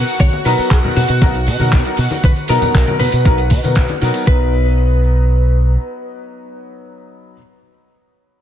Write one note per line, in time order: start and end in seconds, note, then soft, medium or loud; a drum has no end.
0.00 4.28 F#4 medium
0.00 4.28 F#5 medium
0.07 tambourine medium
0.20 0.28 B1 loud
0.20 0.45 C#5 loud
0.20 kick loud
0.20 closed hi-hat medium
0.20 tambourine soft
0.20 high conga medium
0.33 tambourine soft
0.33 muted conga medium
0.45 0.54 B2 medium
0.45 0.81 F#3 loud
0.45 0.81 B3 medium
0.45 0.81 D#4 medium
0.45 0.81 A#4 loud
0.45 0.72 B4 loud
0.45 open hi-hat loud
0.45 tambourine loud
0.58 muted fingered electric bass stroke soft
0.58 tambourine medium
0.70 0.79 B1 loud
0.70 0.77 G#4 loud
0.70 kick loud
0.70 clap loud
0.70 closed hi-hat loud
0.83 0.96 F#3 medium
0.83 0.96 B3 medium
0.83 0.96 D#4 medium
0.83 0.96 A#4 loud
0.83 tambourine soft
0.83 muted conga medium
0.83 high conga medium
0.83 low conga medium
0.97 1.05 B2 medium
0.97 1.94 F#4 medium
0.97 open hi-hat medium
0.97 tambourine loud
0.97 low conga medium
1.08 1.24 B2 loud
1.08 closed hi-hat medium
1.08 tambourine medium
1.21 1.49 B1 medium
1.21 1.34 F#3 loud
1.21 1.34 B3 loud
1.21 1.34 D#4 medium
1.21 1.34 A#4 loud
1.21 kick loud
1.21 closed hi-hat loud
1.21 tambourine medium
1.21 tambourine soft
1.21 muted conga medium
1.35 closed hi-hat medium
1.35 tambourine soft
1.47 1.55 B2 loud
1.47 open hi-hat loud
1.47 tambourine medium
1.59 1.75 B2 medium
1.59 1.82 F#3 medium
1.59 1.82 B3 medium
1.59 1.83 D#4 medium
1.59 1.83 A#4 medium
1.59 tambourine medium
1.59 high conga medium
1.72 1.81 B1 medium
1.72 kick loud
1.72 clap loud
1.72 closed hi-hat medium
1.72 tambourine medium
1.72 tambourine soft
1.72 muted conga medium
1.85 1.93 F#3 medium
1.85 1.93 B3 medium
1.85 1.93 D#4 medium
1.85 1.94 A#4 medium
1.85 closed hi-hat medium
1.85 tambourine soft
1.97 2.06 B2 medium
1.97 open hi-hat loud
1.97 tambourine medium
2.10 tambourine medium
2.10 muted conga medium
2.12 tambourine medium
2.24 2.32 B1 loud
2.24 2.31 B4 loud
2.24 kick loud
2.24 closed hi-hat loud
2.24 tambourine soft
2.24 tambourine medium
2.24 high conga medium
2.36 closed hi-hat medium
2.36 tambourine soft
2.48 2.57 B2 medium
2.48 2.84 F#3 loud
2.48 2.84 B3 loud
2.48 2.84 D#4 loud
2.48 2.99 A#4 loud
2.48 2.85 A#4 loud
2.48 open hi-hat loud
2.48 tambourine loud
2.62 muted fingered electric bass stroke soft
2.62 closed hi-hat medium
2.62 tambourine medium
2.62 muted conga medium
2.62 low conga medium
2.74 2.83 B1 loud
2.74 kick loud
2.74 clap loud
2.74 closed hi-hat medium
2.74 tambourine soft
2.74 tambourine medium
2.87 2.99 F#3 medium
2.87 2.99 B3 medium
2.87 3.00 D#4 medium
2.87 3.00 A#4 loud
2.87 closed hi-hat medium
2.87 tambourine soft
2.87 high conga medium
2.87 low conga medium
3.00 3.08 B2 medium
3.00 3.97 B4 loud
3.00 open hi-hat loud
3.00 tambourine loud
3.00 muted conga medium
3.00 low conga medium
3.12 3.27 B2 loud
3.12 closed hi-hat medium
3.12 tambourine medium
3.25 3.53 B1 medium
3.25 3.37 F#3 loud
3.25 3.38 B3 medium
3.25 3.38 D#4 loud
3.25 3.38 A#4 loud
3.25 kick loud
3.25 closed hi-hat medium
3.25 tambourine soft
3.38 closed hi-hat medium
3.38 tambourine soft
3.50 3.59 B2 loud
3.50 kick medium
3.50 open hi-hat loud
3.50 tambourine medium
3.50 muted conga medium
3.63 3.78 B2 medium
3.63 3.71 F#3 medium
3.63 3.71 B3 medium
3.63 3.71 D#4 medium
3.63 3.72 A#4 medium
3.63 closed hi-hat medium
3.63 tambourine medium
3.63 high conga medium
3.75 3.84 B1 medium
3.75 kick loud
3.75 clap loud
3.75 closed hi-hat medium
3.75 tambourine soft
3.75 tambourine medium
3.89 closed hi-hat medium
3.89 tambourine soft
3.89 muted conga medium
4.01 4.10 B2 medium
4.01 4.24 F#3 medium
4.01 4.25 B3 medium
4.01 4.26 D#4 medium
4.01 4.50 A#4 loud
4.01 open hi-hat medium
4.01 tambourine loud
4.14 closed hi-hat medium
4.14 tambourine medium
4.16 tambourine medium
4.26 5.76 B1 medium
4.26 7.33 F#3 medium
4.26 7.34 B3 medium
4.26 7.35 D#4 medium
4.26 7.35 B4 medium
4.26 7.36 B4 medium
4.26 kick loud